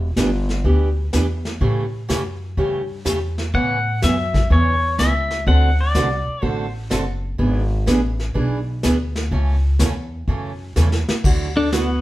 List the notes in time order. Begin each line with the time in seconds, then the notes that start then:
Already playing: E1
0.16 G1 E3 B3 D4 G4, snare, hi-hat pedal
0.49 snare
0.64 D2 E3 B3 D4 G4, brush sweep, kick
1.13 E2 E3 B3 D4 G4, snare, hi-hat pedal
1.45 snare
1.61 A2 C#3 E3 A3 C#4 G4, brush sweep, kick
2.09 F#2 C#3 E3 A3 C#4 G4, snare, hi-hat pedal
2.57 G2 C#3 E3 A3 C#4 G4, brush sweep, kick
3.05 E2 C#3 E3 A3 C#4 G4, snare, hi-hat pedal
3.38 snare
3.54 A2 C#3 E3 B3 C#4 F#5, brush sweep, kick
4.02 F#2 C#3 E3 B3 C#4 E5, snare, hi-hat pedal
4.34 kick, snare
4.50 E2 C#3 E3 B3 C#4 C#5, brush sweep, kick
4.98 C#2 C#3 E3 B3 C#4 E5, snare, hi-hat pedal
5.31 snare
5.46 D2 D3 A3 C4 F#4 A4 F#5, brush sweep, kick
5.81 D5
5.95 C2 D3 A3 C4 F#4 A4, snare, hi-hat pedal
6.28 muted upright bass stroke
6.42 A1 D3 A3 C4 F#4 A4 C5, brush sweep, kick
6.90 F#1 D3 A3 C4 F#4 A4, snare, hi-hat pedal
7.38 G#1 E3 B3 D4 G#4, brush sweep, kick
7.86 A1 E3 B3 D4 G#4, snare, hi-hat pedal
8.20 snare
8.34 B1 E3 B3 D4 G#4, brush sweep, kick
8.83 D2 E3 B3 D4 G#4, snare, hi-hat pedal
9.16 snare
9.31 C#2 C#3 E3 A3 C#4 A4, brush sweep, kick
9.79 E2 C#3 E3 A3 C#4 A4, snare, hi-hat pedal
10.28 F#2 C#3 E3 A3 C#4 A4, brush sweep, kick
10.76 E2 C#3 E3 A3 C#4 A4, snare, hi-hat pedal
10.92 snare
11.08 muted upright bass stroke, snare
11.24 D2 D3 F#3 A3 E4 F#4, brush sweep, kick, crash
11.57 D4 A4
11.72 D3 F#3 A3 B3 E4 F#4, snare, hi-hat pedal